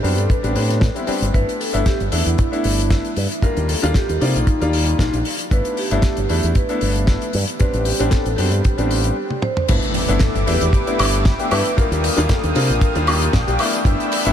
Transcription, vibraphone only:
0.00 0.15 G4 medium
0.19 0.31 A4 medium
0.30 1.04 B4 medium
1.34 1.58 B4 loud
1.60 1.87 A4 medium
1.86 1.98 G4 loud
2.12 3.13 E4 medium
3.43 3.67 A#4 loud
3.69 3.96 A4 medium
3.95 4.22 G4 loud
4.21 5.22 D#4 medium
5.52 5.79 B4 loud
5.79 6.27 G4 medium
6.31 6.55 G4 medium
6.56 7.31 B4 medium
7.60 7.84 B4 loud
7.86 8.10 G4 medium
8.11 8.36 A4 loud
8.36 9.38 G4 medium
9.42 9.69 C5 loud
9.69 10.17 B4 loud
10.21 10.48 A4 loud
10.47 11.21 G4 medium
11.52 11.64 B4 loud
11.78 12.32 A#4 loud
12.29 12.57 A4 medium
12.55 13.30 A#4 loud

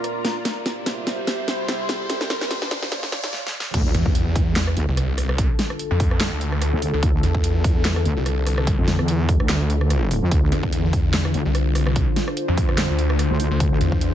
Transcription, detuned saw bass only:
3.95 4.75 E2 loud
4.88 5.48 C2 medium
5.91 6.30 F2 loud
6.32 6.71 D2 loud
6.93 7.01 D2 loud
7.23 8.04 E2 loud
8.17 8.77 C2 loud
10.52 11.33 E2 medium
11.45 12.05 C2 medium
12.48 12.88 F2 medium
12.89 13.29 D2 loud
13.51 13.59 D2 loud
13.81 14.14 E2 loud

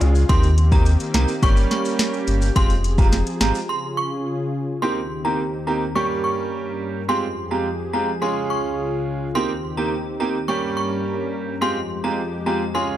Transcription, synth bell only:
0.29 0.40 C6 loud
0.72 0.83 A#5 medium
1.14 1.26 A#5 medium
1.43 1.54 C#6 medium
1.71 1.82 C#6 medium
2.56 2.67 C6 loud
2.98 3.10 A#5 medium
3.41 3.52 A#5 medium
3.69 3.80 C6 medium
3.97 4.08 C#6 medium
4.82 4.93 C6 medium
5.25 5.36 A#5 medium
5.67 5.78 A#5 medium
5.96 6.07 C#6 medium
6.24 6.35 C#6 medium
7.09 7.20 C6 loud
7.51 7.62 A#5 medium
7.93 8.05 A#5 medium
8.22 8.33 C6 medium
8.50 8.61 C#6 medium
9.35 9.46 C6 loud
9.77 9.89 A#5 medium
10.20 10.31 A#5 medium
10.48 10.59 C#6 medium
10.77 10.88 C#6 medium
11.62 11.73 C6 loud
12.04 12.15 A#5 medium
12.46 12.58 A#5 medium
12.75 12.86 C6 medium

